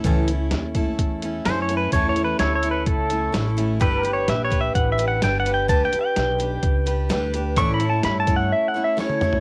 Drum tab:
HH |x-x-x-x-x-x-x-x-|x-x-x-x-x-x-x-x-|x-x-x-x-x-x-x-x-|x-x-x-x-x-x-x-x-|
SD |----o-------o---|----o-------o---|----o-------o---|----o-------o---|
T1 |----------------|----------------|----------------|----------------|
T2 |----------------|----------------|----------------|----------------|
FT |----------------|----------------|----------------|----------------|
BD |o-----o-o-------|o-------o-------|o-----o-o-------|o-------o-------|

HH |x-x-x-x---------|
SD |----o-------o---|
T1 |-------------o--|
T2 |--------------o-|
FT |---------------o|
BD |o-----o---------|